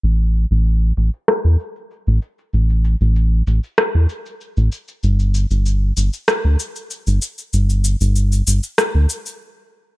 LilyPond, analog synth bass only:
\new Staff \with { instrumentName = "Analog synth bass" } { \clef bass \time 4/4 \key g \lydian \tempo 4 = 96 a,,8. a,,8. a,,16 r8 e,16 r8. a,,16 r8 | a,,8. a,,8. a,,16 r8 e,16 r8. a,,16 r8 | g,,8. g,,8. g,,16 r8 d,16 r8. g,,16 r8 | g,,8. g,,8. g,,16 r8 d,16 r4. | }